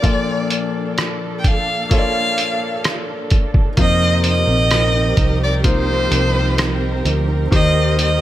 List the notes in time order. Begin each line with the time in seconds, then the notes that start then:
Already playing: D4 D5
0.02 A#2 F3 A#3 F4 A4 D5, kick, closed hi-hat
0.50 closed hi-hat
0.98 cross-stick, closed hi-hat
1.39 G5
1.44 F5, kick, closed hi-hat
1.89 A#3 F4 A4 C#5, kick, closed hi-hat
1.94 F5
1.98 D5
2.38 closed hi-hat
2.84 cross-stick, closed hi-hat
3.30 kick, closed hi-hat
3.54 kick
3.77 F2 C3 F3 A#3 C4 D#4 F4 G4 A#4 C5, kick, closed hi-hat
3.81 D#5
4.23 F3 C4 D#4 A#4, closed hi-hat
4.28 D#5
4.47 A#1 C4 D#4 A#4
4.71 F3 C4 D#4 A#4, cross-stick, closed hi-hat
4.94 C4 D#4 A#4
5.17 C2 F3 C4 D#4 A#4, kick, closed hi-hat
5.44 D5
5.64 A#3 D#4 F4 C5, kick, closed hi-hat
5.87 C4 D#4 A#4
6.10 C2 F3 C4 D#4 A#4, closed hi-hat
6.33 C4 D#4 A#4
6.57 F3 C4 D#4 A#4, cross-stick, closed hi-hat
7.04 D2 F3 C4 D#4 A#4, closed hi-hat
7.27 C4 D#4 A#4
7.50 D#2 D#3 G3 A#3 D#4 G4 C5 D#5, kick, closed hi-hat
7.97 G3 A#3 G4 C5, closed hi-hat
8.02 D#5